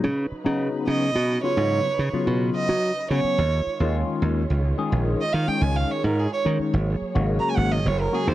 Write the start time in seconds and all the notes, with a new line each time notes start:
0.04 C#3 F#3 D#4 B4
0.32 muted slap bass stroke
0.44 C#3 F#3 B3 D#4
0.87 C#3 D#5
1.15 B2
1.43 C#3 F#3 B3 F4 C#5
1.57 G#2
1.99 C#3
2.13 C#3 F#3 B3 F4, muted slap bass stroke
2.27 B2
2.55 D#5
2.69 F#3
3.11 C#3 F#3 B3 C#4 C#5
3.24 muted slap bass stroke
3.38 D#2 D#3 G#3 F4 C#5
3.67 muted slap bass stroke
3.80 D#2 D#3 G#3 C#4 F4
4.22 D#2
4.50 C#2
4.78 D#3 G#3 C#4 G#4
4.92 A#1
5.21 D#5
5.33 D#3 F5
5.47 D#3 G#3 C#4 G#4 G5, muted slap bass stroke
5.61 C#2 G#5
5.76 F5
5.91 C#5
6.04 G#2 A#4
6.20 G#4
6.33 C#5
6.45 D#3 G#3 C#4 D#4
6.59 muted slap bass stroke
6.73 G#1 F#3 A#3 G#4
7.02 muted slap bass stroke
7.14 G#1 C#3 G#3 A#3 F#4
7.40 A#5
7.49 G#5
7.56 G#1 F#5
7.72 D#5
7.85 F#1 C#5
8.00 A#4
8.12 C#3 G#3 A#3 F#4 G#4
8.27 D#2 C5